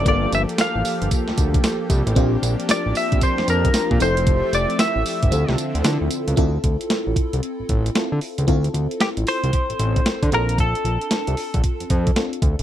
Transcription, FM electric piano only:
X:1
M:4/4
L:1/8
Q:"Swing 16ths" 1/4=114
K:Dm
V:1 name="FM electric piano"
[B,DFA]8 | [CDFG]6- [CDFG] [CEGA]- | [CEGA]4 [CEFA]4 | [CEFA]6 [CEFA]2 |
[CEFA]6- [CEFA] [CDFA]- | [CDFA]6 [CDFA]2 |]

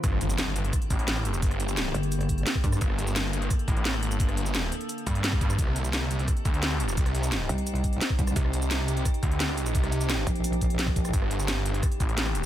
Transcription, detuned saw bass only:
X:1
M:4/4
L:1/8
Q:1/4=173
K:Gm
V:1 name="Detuned saw bass" clef=bass
G,,,3 G,,, z A,,,3 | G,,,3 z4 z | G,,,3 G,,, z A,,,3 | G,,,3 z2 G,,3 |
C,,3 C,, z D,,3 | C,,3 z4 z | C,,3 C,, z D,,3 | C,,3 z4 z |
G,,,3 G,,, z A,,,3 |]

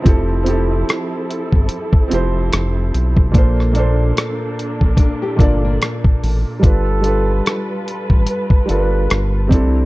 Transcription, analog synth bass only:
X:1
M:4/4
L:1/16
Q:"Swing 16ths" 1/4=73
K:Gmix
V:1 name="Analog synth bass" clef=bass
F,,,4 z3 G,,, z2 F,,,2 F,,,2 B,,,2 | _B,,,4 z3 B,,, z2 G,,,2 z2 A,,, z | G,,,4 z3 A,,, z2 G,,,2 G,,,2 C,,2 |]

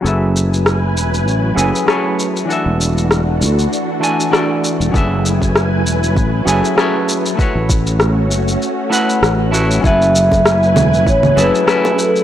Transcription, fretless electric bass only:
X:1
M:4/4
L:1/16
Q:"Swing 16ths" 1/4=98
K:F#m
V:1 name="Fretless electric bass" clef=bass
F,,,6 E,,,2 A,,,2 F,,, z4 z | z E,,,4- E,,, D,,2 z6 z E,,, | F,,,6 E,,,2 A,,,2 F,,, z4 z | z A,,,4- A,,, F,,,2 z4 A,,,4 |
F,,,6 E,,,2 A,,,2 F,,, z4 z |]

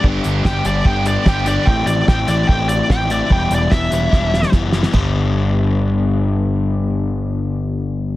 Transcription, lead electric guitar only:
X:1
M:4/4
L:1/8
Q:1/4=147
K:G
V:1 name="Lead electric guitar"
z2 g d g d g d | g d g d g d g d | g d e4 z2 | z8 |
z8 |]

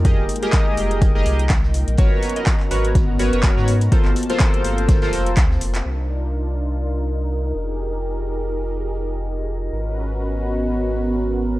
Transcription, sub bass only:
X:1
M:4/4
L:1/16
Q:"Swing 16ths" 1/4=124
K:Cm
V:1 name="Sub bass" clef=bass
F,, F,,, z4 F,,,4 C,,4- C,, B,,, | A,,, z4 z A,,,4 A,,, _G,,,2 A,,3 | z G,,, z4 G,,,4 F,,,2 D,,2 F,,,2 | C,,12- C,,2 F,,,2- |
F,,,16 | A,,,16 |]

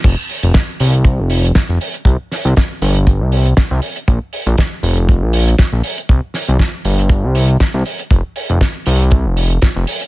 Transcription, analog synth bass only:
X:1
M:4/4
L:1/16
Q:"Swing 16ths" 1/4=119
K:Fmix
V:1 name="Analog synth bass" clef=bass
F,,, z2 F,,, z2 C,,3 F,,,3 z F,,, z2 | C,, z2 C,, z2 G,,,3 C,,3 z C,, z2 | B,,, z2 B,,, z2 F,,,3 B,,,3 z B,,, z2 | C,, z2 C,, z2 G,,,3 C,,3 z C,, z2 |
F,,, z2 F,,, z2 C,,3 F,,,3 z F,,, z2 |]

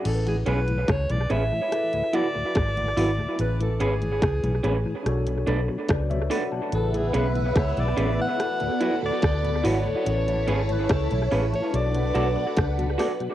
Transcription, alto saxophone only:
X:1
M:4/4
L:1/16
Q:1/4=72
K:A
V:1 name="Alto saxophone"
A G B2 c d e4 d6 | B A G6 z8 | A G B2 c d2 f4 d3 c2- | c3 B A2 z c d6 z2 |]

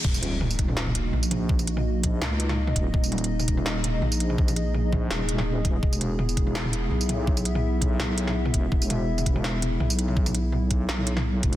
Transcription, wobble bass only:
X:1
M:4/4
L:1/8
Q:"Swing 16ths" 1/4=166
K:Ebphr
V:1 name="Wobble bass" clef=bass
E,,,6 B,,,2- | B,,,4 D,,3 E,,, | E,,,6 B,,,2- | B,,,4 E,,,4 |
=E,,,6 =B,,,2- | =B,,,4 B,,,3 =E,,, | =E,,,6 =B,,,2- | =B,,,4 B,,,3 =E,,, |]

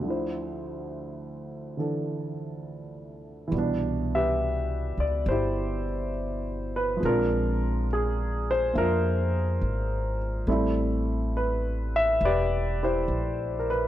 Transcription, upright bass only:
X:1
M:4/4
L:1/8
Q:"Swing" 1/4=69
K:C
V:1 name="Upright bass" clef=bass
z8 | C,,3 _D,, G,,,4 | _B,,,4 F,,2 _A,,,2 | A,,,4 E,,,2 _B,,,2 |]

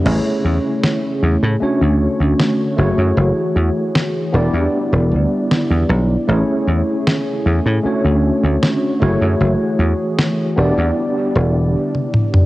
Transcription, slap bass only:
X:1
M:4/4
L:1/16
Q:1/4=77
K:A
V:1 name="Slap bass" clef=bass
A,,, z E,, z3 E,, A,, z D,, z D,, z2 F,,, F,, | F,,, z E,, z3 E,,, E,, z E,,, D,, z2 E,, B,,, z | A,,, z E,, z3 E,, A,, z D,, z D,, z2 F,,, F,, | F,,, z E,, z3 E,,, E,, z2 E,,,2 z4 |]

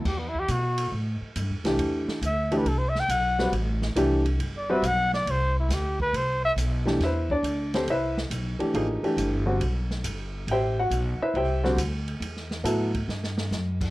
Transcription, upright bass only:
X:1
M:4/4
L:1/8
Q:"Swing" 1/4=138
K:Ador
V:1 name="Upright bass" clef=bass
E,,2 B,,2 A,, z (3G,, E,, C,, | E,, z D,,2 C,,2 B,,,2 | A,,,2 C,,2 G,,,2 B,,,2 | C,,2 D,,2 C,,2 B,,,2 |
E,,2 D,,2 C,,2 B,,, z | A,,, z G,,,2 B,,,2 G,,,2 | A,,,2 B,,, z C,,2 D,,2 | E,,2 A,,2 G,,2 F,,2 |]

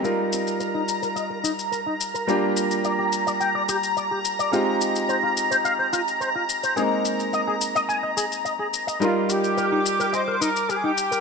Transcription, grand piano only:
X:1
M:4/4
L:1/8
Q:1/4=107
K:Eb
V:1 name="Grand piano"
[G,EFB]8 | [G,B,DFG]8 | [A,CEFG]8 | [A,B,CE]8 |
[G,EFB]8 |]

